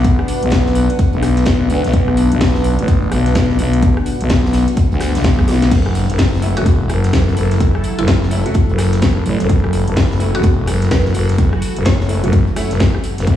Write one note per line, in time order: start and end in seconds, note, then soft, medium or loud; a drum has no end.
0.00 0.17 B1 loud
0.00 5.67 B3 medium
0.00 5.67 D4 medium
0.00 5.71 D4 medium
0.00 5.67 F#4 medium
0.00 7.01 B4 medium
0.00 13.27 F#5 medium
0.04 kick loud
0.04 closed hi-hat medium
0.19 cross-stick medium
0.28 closed hi-hat medium
0.28 open hi-hat loud
0.43 0.88 B1 loud
0.43 closed hi-hat medium
0.50 closed hi-hat medium
0.52 kick loud
0.52 snare loud
0.52 closed hi-hat medium
0.66 snare medium
0.75 closed hi-hat medium
0.75 open hi-hat loud
0.90 closed hi-hat medium
0.99 kick loud
0.99 closed hi-hat medium
1.13 1.45 B1 loud
1.13 closed hi-hat soft
1.23 cross-stick medium
1.23 snare soft
1.23 closed hi-hat medium
1.23 open hi-hat loud
1.37 snare soft
1.37 closed hi-hat medium
1.45 1.68 B1 loud
1.45 kick loud
1.45 snare loud
1.45 closed hi-hat medium
1.70 1.82 D2 loud
1.70 closed hi-hat medium
1.70 open hi-hat loud
1.84 1.92 B1 medium
1.84 snare soft
1.84 closed hi-hat medium
1.93 2.29 B1 loud
1.93 kick loud
1.93 closed hi-hat medium
2.08 cross-stick medium
2.17 closed hi-hat medium
2.17 open hi-hat loud
2.32 2.77 B1 loud
2.32 closed hi-hat medium
2.41 kick loud
2.41 snare loud
2.41 closed hi-hat medium
2.41 open hi-hat medium
2.55 snare soft
2.64 closed hi-hat medium
2.64 open hi-hat medium
2.79 3.10 A1 loud
2.79 closed hi-hat medium
2.88 kick loud
2.88 closed hi-hat medium
3.12 3.34 B1 medium
3.12 cross-stick medium
3.12 closed hi-hat medium
3.12 open hi-hat loud
3.26 snare soft
3.26 closed hi-hat medium
3.35 3.57 B1 loud
3.35 kick loud
3.35 snare loud
3.35 closed hi-hat medium
3.50 snare soft
3.59 3.95 B1 loud
3.59 open hi-hat loud
3.73 closed hi-hat medium
3.82 kick loud
3.82 closed hi-hat medium
3.97 cross-stick medium
4.06 closed hi-hat medium
4.06 open hi-hat loud
4.21 4.66 B1 loud
4.21 closed hi-hat medium
4.29 kick loud
4.29 snare loud
4.29 closed hi-hat medium
4.45 snare medium
4.53 snare medium
4.53 open hi-hat loud
4.53 open hi-hat medium
4.68 closed hi-hat medium
4.77 kick loud
4.77 closed hi-hat medium
4.92 5.13 D2 loud
4.92 closed hi-hat soft
5.00 cross-stick medium
5.00 snare loud
5.00 open hi-hat loud
5.00 open hi-hat medium
5.15 5.46 B1 medium
5.15 snare loud
5.15 closed hi-hat medium
5.15 open hi-hat medium
5.24 kick loud
5.24 snare loud
5.24 closed hi-hat medium
5.39 kick medium
5.39 cross-stick medium
5.48 5.70 B1 loud
5.48 snare loud
5.48 open hi-hat medium
5.48 open hi-hat loud
5.48 high tom medium
5.62 snare medium
5.62 snare soft
5.62 closed hi-hat medium
5.71 6.07 F#1 loud
5.71 13.23 F#3 medium
5.71 13.36 E4 medium
5.71 9.46 E4 medium
5.71 13.23 A4 medium
5.71 kick loud
5.71 closed hi-hat medium
5.71 crash medium
5.86 cross-stick medium
5.95 closed hi-hat medium
5.95 open hi-hat loud
6.10 6.55 F#1 loud
6.10 closed hi-hat medium
6.18 13.36 A4 medium
6.18 kick loud
6.18 snare loud
6.18 closed hi-hat medium
6.18 open hi-hat medium
6.33 snare soft
6.42 6.55 A3 medium
6.42 6.55 C#4 medium
6.42 6.55 E4 medium
6.42 closed hi-hat medium
6.42 open hi-hat loud
6.57 6.88 E1 loud
6.57 6.65 A3 loud
6.57 6.65 C#4 medium
6.57 6.65 F#4 loud
6.57 6.72 F#4 medium
6.57 closed hi-hat medium
6.66 kick loud
6.66 closed hi-hat medium
6.90 7.12 F#1 loud
6.90 cross-stick medium
6.90 closed hi-hat medium
6.90 open hi-hat loud
7.04 snare soft
7.04 closed hi-hat medium
7.13 7.35 F#1 loud
7.13 kick loud
7.13 snare loud
7.13 closed hi-hat medium
7.28 snare soft
7.37 7.73 F#1 loud
7.37 closed hi-hat medium
7.37 open hi-hat loud
7.51 snare soft
7.51 closed hi-hat medium
7.60 kick loud
7.60 closed hi-hat medium
7.75 cross-stick medium
7.84 closed hi-hat medium
7.84 open hi-hat loud
7.99 8.44 F#1 loud
7.99 8.04 E4 medium
7.99 closed hi-hat medium
8.08 8.17 E4 medium
8.08 kick loud
8.08 snare loud
8.08 closed hi-hat medium
8.23 snare medium
8.31 8.44 A3 medium
8.31 8.44 C#4 medium
8.31 8.44 E4 medium
8.31 closed hi-hat medium
8.31 open hi-hat loud
8.46 8.54 A3 medium
8.46 8.54 C#4 medium
8.46 8.54 F#4 loud
8.46 closed hi-hat medium
8.54 kick loud
8.54 closed hi-hat medium
8.69 9.01 F#1 loud
8.69 closed hi-hat soft
8.79 cross-stick medium
8.79 snare soft
8.79 closed hi-hat medium
8.79 open hi-hat loud
8.93 snare soft
8.93 closed hi-hat medium
9.02 9.24 F#1 loud
9.02 kick loud
9.02 snare loud
9.02 closed hi-hat medium
9.26 9.38 A1 loud
9.26 closed hi-hat medium
9.26 open hi-hat loud
9.40 9.48 F#1 loud
9.40 snare soft
9.40 closed hi-hat medium
9.49 9.85 F#1 loud
9.49 13.24 F#4 medium
9.49 kick loud
9.49 closed hi-hat medium
9.64 cross-stick medium
9.73 closed hi-hat medium
9.73 open hi-hat loud
9.88 10.32 F#1 loud
9.88 closed hi-hat medium
9.96 kick loud
9.96 snare loud
9.96 closed hi-hat medium
9.96 open hi-hat medium
10.11 snare soft
10.20 10.33 A3 medium
10.20 10.33 C#4 medium
10.20 10.33 E4 medium
10.20 closed hi-hat medium
10.20 open hi-hat loud
10.35 10.66 E1 medium
10.35 10.43 A3 medium
10.35 10.43 C#4 medium
10.35 10.43 F#4 loud
10.35 10.50 F#4 loud
10.35 closed hi-hat medium
10.43 kick loud
10.43 closed hi-hat medium
10.67 10.90 F#1 loud
10.67 cross-stick medium
10.67 closed hi-hat medium
10.67 open hi-hat loud
10.82 snare soft
10.82 closed hi-hat medium
10.91 11.13 F#1 loud
10.91 11.09 B4 medium
10.91 kick loud
10.91 snare loud
10.91 closed hi-hat medium
11.05 snare soft
11.14 11.51 F#1 loud
11.14 closed hi-hat medium
11.14 open hi-hat loud
11.29 snare soft
11.29 closed hi-hat soft
11.38 kick loud
11.38 closed hi-hat medium
11.53 cross-stick medium
11.62 closed hi-hat medium
11.62 open hi-hat loud
11.76 12.21 F#1 medium
11.76 closed hi-hat medium
11.85 12.53 C#5 medium
11.85 kick loud
11.85 snare loud
11.85 closed hi-hat medium
12.00 snare medium
12.09 12.22 A3 medium
12.09 12.22 C#4 medium
12.09 12.22 E4 medium
12.09 closed hi-hat medium
12.09 open hi-hat loud
12.24 12.45 F#1 medium
12.24 12.32 A3 medium
12.24 12.32 C#4 medium
12.24 12.32 F#4 loud
12.24 closed hi-hat soft
12.33 kick loud
12.33 closed hi-hat medium
12.47 closed hi-hat soft
12.56 12.69 A3 medium
12.56 12.69 C#4 medium
12.56 12.69 E4 loud
12.56 cross-stick medium
12.56 snare soft
12.56 closed hi-hat medium
12.56 open hi-hat loud
12.71 12.92 F#1 loud
12.71 snare soft
12.71 closed hi-hat soft
12.80 kick loud
12.80 snare loud
12.80 closed hi-hat medium
12.95 cross-stick medium
13.04 closed hi-hat medium
13.04 open hi-hat loud
13.18 13.26 F#1 medium
13.18 snare medium
13.18 closed hi-hat soft
13.27 13.36 B1 loud
13.27 13.36 B3 medium
13.27 13.36 D4 medium
13.27 13.36 F#4 medium
13.27 kick loud
13.27 closed hi-hat medium